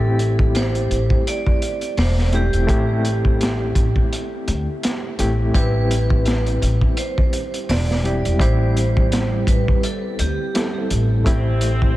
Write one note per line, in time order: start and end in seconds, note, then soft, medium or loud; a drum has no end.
0.00 0.87 A1 medium
0.00 2.29 A3 medium
0.00 2.30 C4 medium
0.00 2.30 E4 medium
0.00 2.30 G4 medium
0.00 0.58 A4 medium
0.19 closed hi-hat medium
0.39 kick medium
0.55 1.23 C5 loud
0.55 snare loud
0.55 closed hi-hat medium
0.75 closed hi-hat soft
0.90 1.08 A1 medium
0.90 closed hi-hat medium
1.10 kick medium
1.27 1.95 D5 loud
1.27 closed hi-hat medium
1.46 kick medium
1.62 closed hi-hat medium
1.81 closed hi-hat soft
1.97 2.49 E1 loud
1.97 2.32 C5 medium
1.97 snare loud
1.97 open hi-hat medium
2.18 snare soft
2.33 2.65 A3 medium
2.33 2.65 C4 medium
2.33 2.65 E4 medium
2.33 2.66 G4 medium
2.33 3.73 G4 medium
2.33 closed hi-hat medium
2.53 2.67 E1 medium
2.53 closed hi-hat soft
2.67 3.73 A1 medium
2.67 5.14 A3 medium
2.67 5.15 C4 medium
2.67 5.15 E4 medium
2.67 5.16 G4 medium
2.67 kick medium
2.67 closed hi-hat medium
3.05 closed hi-hat medium
3.25 kick medium
3.41 snare loud
3.41 closed hi-hat medium
3.75 3.93 A1 medium
3.75 kick medium
3.75 closed hi-hat medium
3.96 kick medium
4.13 closed hi-hat medium
4.48 4.65 D2 medium
4.48 closed hi-hat medium
4.83 snare loud
4.83 closed hi-hat medium
5.19 5.51 A1 medium
5.19 5.51 A3 medium
5.19 5.51 C4 medium
5.19 5.51 E4 medium
5.19 5.51 G4 medium
5.19 closed hi-hat medium
5.54 6.59 A1 loud
5.54 8.00 G3 medium
5.54 8.01 C4 medium
5.54 8.01 E4 medium
5.54 8.02 G4 medium
5.54 6.58 B4 loud
5.54 kick loud
5.54 closed hi-hat medium
5.91 closed hi-hat medium
6.10 kick medium
6.26 snare loud
6.26 closed hi-hat medium
6.46 closed hi-hat soft
6.62 6.79 A1 medium
6.62 closed hi-hat medium
6.81 kick medium
6.97 7.71 C5 loud
6.97 closed hi-hat medium
7.18 kick medium
7.33 closed hi-hat medium
7.54 closed hi-hat soft
7.69 8.21 E1 loud
7.69 8.37 D5 loud
7.69 snare loud
7.69 open hi-hat medium
7.91 snare soft
8.04 8.36 G3 medium
8.04 8.37 C4 medium
8.04 8.37 E4 medium
8.04 8.37 G4 medium
8.04 closed hi-hat medium
8.25 8.39 E1 medium
8.25 closed hi-hat soft
8.39 9.44 A1 medium
8.39 10.51 G3 medium
8.39 10.51 C4 medium
8.39 10.52 E4 medium
8.39 10.52 G4 medium
8.39 9.51 C5 loud
8.39 kick medium
8.39 closed hi-hat medium
8.77 closed hi-hat medium
8.97 kick loud
9.12 snare loud
9.12 closed hi-hat medium
9.47 9.65 A1 medium
9.47 9.81 B4 medium
9.47 kick loud
9.47 closed hi-hat medium
9.68 kick medium
9.83 10.21 A4 medium
9.83 closed hi-hat medium
10.19 10.36 D2 medium
10.19 10.87 G4 medium
10.19 closed hi-hat medium
10.54 11.22 G3 medium
10.54 11.22 C4 medium
10.54 11.23 E4 medium
10.54 11.23 A4 medium
10.54 snare loud
10.54 closed hi-hat medium
10.90 11.22 A1 medium
10.90 closed hi-hat medium
11.25 11.97 A1 medium
11.25 11.97 A3 medium
11.25 11.97 C4 medium
11.25 11.97 E4 medium
11.25 11.97 G4 medium
11.25 kick loud
11.25 closed hi-hat medium
11.61 closed hi-hat medium
11.82 kick medium